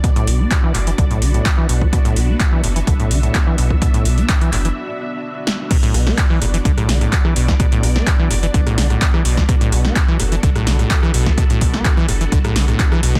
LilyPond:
<<
  \new Staff \with { instrumentName = "String machine" } { \time 4/4 \key b \minor \tempo 4 = 127 << { d''1 | e''1~ | e''1 | d''1~ |
d''1 | a'1~ | a'1 | } \\ { <b d' fis'>1~ | <b d' fis'>1~ | <b d' fis'>1 | <b d' fis'>1~ |
<b d' fis'>1~ | <b d' fis'>1~ | <b d' fis'>1 | } >> }
  \new Staff \with { instrumentName = "Acid bass" } { \clef bass \time 4/4 \key b \minor b,16 a,16 b,16 b16 b,16 e16 a,16 e16 d16 a,16 d16 a,16 b,16 e16 b,16 fis16 | b,16 a,16 b,16 b16 b,16 e16 a,16 e16 d16 a,16 d16 a,16 b,16 e16 b,16 fis16 | b,16 a,16 b,16 b16 b,16 e16 a,16 e16 r2 | b,16 a,16 b,16 b16 b,16 e16 a,16 e16 d16 a,16 d16 a,16 b,16 e16 b,16 fis16 |
b,16 a,16 b,16 b16 b,16 e16 a,16 e16 d16 a,16 d16 a,16 b,16 e16 b,16 fis16 | b,16 a,16 b,16 b16 b,16 e16 a,16 e16 d16 a,16 d16 a,16 b,16 e16 b,16 fis16 | b,16 a,16 b,16 b16 b,16 e16 a,16 e16 d16 a,16 d16 a,16 b,16 e16 b,16 fis16 | }
  \new Staff \with { instrumentName = "Sub bass" } { \clef bass \time 4/4 \key b \minor r8 b,,8 r8 fis,,8 b,,8 b,,8 r8 b,,8 | r8 b,,8 r8 fis,,8 b,,8 b,,8 r8 b,,8 | r8 b,,8 r8 fis,,8 r2 | r8 b,,8 r8 fis,,8 b,,8 b,,8 r8 b,,8 |
r8 b,,8 r8 fis,,8 b,,8 b,,8 r8 b,,8 | r8 b,,8 r8 fis,,8 b,,8 b,,8 r8 b,,8 | r8 b,,8 r8 fis,,8 b,,8 b,,8 r8 b,,8 | }
  \new DrumStaff \with { instrumentName = "Drums" } \drummode { \time 4/4 <hh bd>16 hh16 hho8 <hc hh bd>8 <hc hho>16 hh16 <hh bd>16 hh16 hho16 hh16 <hc hh bd>8 hho16 bd16 | <hh bd>16 hh16 hho8 <hc hh bd>8 hho16 hh16 <hh bd>16 hh16 hho16 hh16 <hc hh bd>8 hho16 bd16 | <hh bd>16 hh16 hho16 hh16 <hc hh bd>16 hh16 <hc hho>16 hh16 r4 r8 sn8 | <cymc hh bd ss>16 hh16 <hho ss>16 sn16 <hc hh bd ss>8 <hho ss>16 hh16 <hh bd>16 <hh ss>16 <hho sn>16 <hh ss>16 <hc hh bd>16 ss16 hho16 <bd sn>16 |
<hh bd ss>16 hh16 <hho ss>16 sn16 <hc hh bd ss>8 <hho ss>16 hh16 <hh bd>16 <hh ss>16 <hho sn>16 <hh ss>16 <hc hh bd>16 ss16 hho16 <bd sn>16 | <hh bd ss>16 hh16 <hho ss>16 sn16 <hc hh bd ss>8 <hho ss>16 hh16 <hh bd>16 <hh ss>16 <hho sn>16 <hh ss>16 <hc hh bd>16 ss16 hho16 <bd sn>16 | <hh bd ss>16 hh16 <hho bd ss>16 sn16 <hc hh bd ss>8 <hho ss>16 hh16 <hh bd>16 <hh ss>16 <hho sn>16 <hh ss>16 <hc hh bd>16 ss16 hho16 <bd sn>16 | }
>>